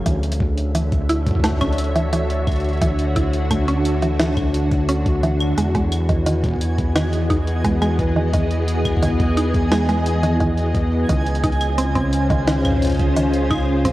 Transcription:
Already playing: G#4
0.06 D2 D3 E3, kick, closed hi-hat
0.23 closed hi-hat
0.31 E5, closed hi-hat
0.39 F#4, kick
0.58 D4, closed hi-hat
0.75 E3, closed hi-hat
0.92 C#5, kick, closed hi-hat
1.09 E4, closed hi-hat
1.27 kick, closed hi-hat
1.31 kick
1.35 kick
1.39 kick
1.44 A3, kick, snare, closed hi-hat
1.48 kick
1.52 kick
1.57 kick
1.61 C#4, kick, closed hi-hat, claves
1.73 closed hi-hat
1.78 closed hi-hat
1.84 closed hi-hat
1.96 E3, closed hi-hat
2.13 E3, closed hi-hat
2.30 closed hi-hat
2.47 kick, closed hi-hat, claves
2.52 closed hi-hat
2.56 closed hi-hat
2.60 closed hi-hat
2.64 closed hi-hat
2.69 closed hi-hat
2.73 closed hi-hat
2.77 closed hi-hat
2.82 E3, kick, closed hi-hat
2.99 closed hi-hat
3.16 E4, kick, closed hi-hat
3.33 closed hi-hat
3.51 A3, kick, closed hi-hat, claves
3.68 C#4, closed hi-hat
3.85 closed hi-hat
4.02 E3, closed hi-hat
4.20 E3, snare, closed hi-hat
4.37 kick, closed hi-hat, claves
4.54 closed hi-hat
4.71 kick, closed hi-hat
4.89 C#4, closed hi-hat
5.06 kick, closed hi-hat
5.23 E3, closed hi-hat
5.40 claves
5.58 E2 E3 G#3 G#5, closed hi-hat
5.75 G#3, kick, closed hi-hat
5.92 B3 D#5, closed hi-hat, claves
6.09 D#3, kick, closed hi-hat
6.27 D#3, closed hi-hat
6.39 G#4
6.44 kick, closed hi-hat
6.46 kick
6.49 kick
6.51 kick
6.54 kick
6.56 kick
6.59 kick, closed hi-hat
6.78 kick, closed hi-hat
6.96 D#3, snare, closed hi-hat, claves
7.13 closed hi-hat
7.30 D#4, kick, closed hi-hat
7.47 closed hi-hat
7.64 G#3, kick, closed hi-hat
7.82 G#3, closed hi-hat, claves
7.99 kick, closed hi-hat
8.16 D#3
8.33 D#3, kick, closed hi-hat
8.51 closed hi-hat
8.68 closed hi-hat
8.85 kick, closed hi-hat, claves
8.97 kick
9.02 D#3, closed hi-hat
9.08 kick
9.20 kick, closed hi-hat
9.37 D#4, closed hi-hat
9.54 kick, closed hi-hat
9.71 G#3, snare, closed hi-hat, claves
9.89 G#3, closed hi-hat
10.06 closed hi-hat
10.23 D#3, closed hi-hat
10.40 D#3, kick, closed hi-hat
10.58 closed hi-hat
10.75 kick, closed hi-hat
11.09 C#2 C#3 D#3, kick, closed hi-hat
11.27 closed hi-hat
11.34 F4, closed hi-hat
11.44 D#4 C5, kick, closed hi-hat
11.52 C#4, closed hi-hat
11.61 closed hi-hat, claves
11.78 C4, closed hi-hat
11.95 C4, kick, closed hi-hat
12.13 closed hi-hat
12.30 D#3, kick, closed hi-hat
12.47 D#3, snare, closed hi-hat
12.64 kick, closed hi-hat, claves
12.70 kick
12.76 kick
12.82 kick, closed hi-hat
12.84 closed hi-hat
12.87 kick, closed hi-hat
12.89 closed hi-hat
12.92 kick, closed hi-hat
12.94 closed hi-hat
12.96 kick, closed hi-hat
12.99 closed hi-hat
13.16 D#3, closed hi-hat
13.33 closed hi-hat
13.51 D#4, kick, closed hi-hat, claves
13.53 claves
13.61 claves
13.85 C4, kick, closed hi-hat

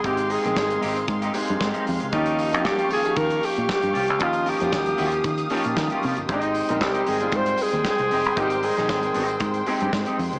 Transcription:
Already playing: G#3 C4 D#4 G4 G#4 C6
0.04 G#1 G#3 C4 D#4 G4 G#4 F5, kick, closed hi-hat
0.17 muted clean electric guitar stroke, closed hi-hat
0.29 C4 D#4 G#4, open hi-hat
0.43 A#1 D#3 G#3 C4 D#4 G4 G#4, closed hi-hat
0.56 G#1, kick, snare
0.69 muted clean electric guitar stroke, closed hi-hat
0.81 G#1 C4 D#4 G4, open hi-hat
0.95 muted clean electric guitar stroke, closed hi-hat
1.08 G#2, muted clean electric guitar stroke, kick, closed hi-hat
1.22 C4 D#4 G4, closed hi-hat
1.34 G#3 C4 D#4 G4, muted clean electric guitar stroke, open hi-hat
1.42 G#4
1.48 G2, muted clean electric guitar stroke, closed hi-hat
1.60 G#2, muted clean electric guitar stroke, kick, snare
1.73 C4 D#4 G4, closed hi-hat
1.87 F2, muted clean electric guitar stroke, open hi-hat
2.00 C#2, muted clean electric guitar stroke, closed hi-hat
2.12 D#2 F3 A#3 C#4 D#4 F4 G4 C#6, kick, closed hi-hat
2.26 closed hi-hat
2.39 muted clean electric guitar stroke, open hi-hat
2.52 F2 F3 A#3 C#4 D#4 F4 F#4 G4, closed hi-hat
2.59 G4
2.65 G2 G4, muted clean electric guitar stroke, kick, snare
2.77 C#4 F4 G4, closed hi-hat
2.89 D#2 C#4 F4 G4 G#4, open hi-hat
3.03 F3 A#3 C#4 D#4 G4, muted clean electric guitar stroke, closed hi-hat
3.15 D#3 A#4, muted clean electric guitar stroke, kick, closed hi-hat
3.29 muted clean electric guitar stroke, closed hi-hat
3.43 G4, open hi-hat
3.55 A#2, muted clean electric guitar stroke, closed hi-hat
3.67 muted clean electric guitar stroke, kick, snare
3.72 G4
3.81 G2, muted clean electric guitar stroke, closed hi-hat
3.93 C2 C#4 F4 G4, open hi-hat
4.07 C#2, muted clean electric guitar stroke, closed hi-hat
4.18 D#2 F3 A#3 C#4 D#4 F4 G4 D#6, kick, closed hi-hat
4.23 F4
4.33 muted clean electric guitar stroke, closed hi-hat
4.45 C#4 F4 A#4, open hi-hat
4.49 G4
4.59 F2 F3 A#3 C#4 D#4 F4 F#4 G4, closed hi-hat
4.68 G4
4.72 D#2, kick, snare
4.86 muted clean electric guitar stroke, closed hi-hat
4.97 D#2 C#4 F4 G4, open hi-hat
5.11 muted clean electric guitar stroke, closed hi-hat
5.23 D#3, muted clean electric guitar stroke, kick, closed hi-hat
5.38 muted clean electric guitar stroke, closed hi-hat
5.50 F3 A#3 C#4 D#4 F4 G4, open hi-hat
5.64 A#2 C#4 F4 G4, closed hi-hat
5.77 D#3, muted clean electric guitar stroke, kick, snare
5.90 C#4 F4 G4, closed hi-hat
6.03 C3 C#4 F4 G4, open hi-hat
6.17 G1, muted clean electric guitar stroke, closed hi-hat
6.28 G#1 G#3 C4 D#4 G4 G#4 C5 G5 C6, kick, closed hi-hat
6.42 closed hi-hat
6.54 muted clean electric guitar stroke, open hi-hat
6.68 A#1 G3 G#3 C4 D#4 G4 A#4, closed hi-hat
6.81 C2 G4, kick, snare
6.94 C4 D#4 G4, closed hi-hat
7.06 G#1 C4 D#4 G4 G#4, open hi-hat
7.20 G3 G#3 C4 D#4 F4, muted clean electric guitar stroke, closed hi-hat
7.32 G#2, muted clean electric guitar stroke, kick, closed hi-hat
7.36 C5
7.44 muted clean electric guitar stroke, closed hi-hat
7.58 open hi-hat
7.62 G#4
7.72 D#2, muted clean electric guitar stroke, closed hi-hat
7.85 muted clean electric guitar stroke, kick, snare
7.89 G#4
7.98 C2, muted clean electric guitar stroke, closed hi-hat
8.11 F1 C4 D#4 G4, open hi-hat
8.24 G1, muted clean electric guitar stroke, closed hi-hat
8.36 G#1 G3 G#3 C4 D#4 G4 A#4, kick, closed hi-hat
8.41 G4
8.50 muted clean electric guitar stroke, closed hi-hat
8.63 C4 D#4 G#4, open hi-hat
8.76 A#1 D#3 G#3 C4 D#4 G4 G#4, snare, closed hi-hat
8.89 G#1, kick, snare
9.01 muted clean electric guitar stroke, closed hi-hat
9.14 G#1 C4 D#4 G4, open hi-hat
9.28 muted clean electric guitar stroke, closed hi-hat
9.40 G#2, muted clean electric guitar stroke, kick, closed hi-hat
9.54 muted clean electric guitar stroke, closed hi-hat
9.66 G#3 C4 D#4 G4 G#4, open hi-hat
9.80 G2 C4 D#4 G4, closed hi-hat
9.93 G#2, kick, snare
10.06 C4 D#4 G4, closed hi-hat
10.19 F2, muted clean electric guitar stroke, open hi-hat
10.33 C#2, muted clean electric guitar stroke, closed hi-hat

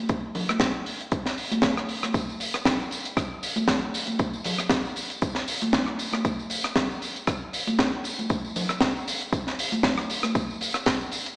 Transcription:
0.09 kick, closed hi-hat
0.35 open hi-hat, low conga
0.49 cross-stick, closed hi-hat, high conga
0.60 kick, snare, closed hi-hat
0.86 open hi-hat
1.01 closed hi-hat
1.12 kick, closed hi-hat
1.26 snare
1.38 open hi-hat
1.51 closed hi-hat, high conga
1.62 kick, snare, closed hi-hat
1.77 cross-stick
1.89 open hi-hat
2.03 cross-stick, closed hi-hat, high conga
2.14 kick, closed hi-hat, tambourine
2.29 tambourine
2.40 open hi-hat, tambourine
2.54 cross-stick, closed hi-hat, tambourine
2.65 kick, snare, closed hi-hat, tambourine
2.80 tambourine
2.91 open hi-hat, tambourine
3.05 closed hi-hat, tambourine
3.17 kick, cross-stick, closed hi-hat, tambourine
3.43 open hi-hat, tambourine
3.56 closed hi-hat, tambourine, high conga
3.68 kick, snare, closed hi-hat, tambourine
3.94 open hi-hat, tambourine
4.07 closed hi-hat, tambourine, high conga
4.19 kick, closed hi-hat, tambourine
4.34 tambourine
4.44 open hi-hat, tambourine, low conga
4.58 cross-stick, closed hi-hat, tambourine
4.70 kick, snare, closed hi-hat, tambourine
4.85 tambourine
4.96 open hi-hat, tambourine
5.10 closed hi-hat, tambourine
5.22 kick, closed hi-hat, tambourine
5.35 snare
5.48 open hi-hat, tambourine
5.62 closed hi-hat, tambourine, high conga
5.73 kick, snare, closed hi-hat, tambourine
5.86 cross-stick
5.99 open hi-hat, tambourine
6.12 cross-stick, closed hi-hat, tambourine, high conga
6.25 kick, closed hi-hat, tambourine
6.39 tambourine
6.50 open hi-hat, tambourine
6.64 cross-stick, closed hi-hat
6.76 kick, snare, closed hi-hat, tambourine
6.91 tambourine
7.02 open hi-hat, tambourine
7.16 closed hi-hat, tambourine
7.27 kick, cross-stick, closed hi-hat, tambourine
7.53 open hi-hat, tambourine
7.67 closed hi-hat, tambourine, high conga
7.79 kick, snare, closed hi-hat
8.04 open hi-hat, tambourine
8.19 closed hi-hat, tambourine, high conga
8.30 kick, closed hi-hat, tambourine
8.45 tambourine
8.56 open hi-hat, tambourine, low conga
8.69 cross-stick, closed hi-hat, tambourine
8.81 kick, snare, closed hi-hat, tambourine
8.96 tambourine
9.08 open hi-hat, tambourine
9.21 closed hi-hat, tambourine
9.33 kick, closed hi-hat, tambourine
9.47 snare
9.59 open hi-hat, tambourine
9.72 closed hi-hat, tambourine, high conga
9.83 kick, snare, closed hi-hat, tambourine
9.98 cross-stick, tambourine
10.10 open hi-hat, tambourine
10.23 cross-stick, closed hi-hat, tambourine, high conga
10.35 kick, closed hi-hat, tambourine
10.50 tambourine
10.61 open hi-hat, tambourine
10.74 cross-stick, closed hi-hat, tambourine
10.86 kick, snare, closed hi-hat, tambourine
11.01 tambourine
11.12 open hi-hat, tambourine
11.26 closed hi-hat, tambourine

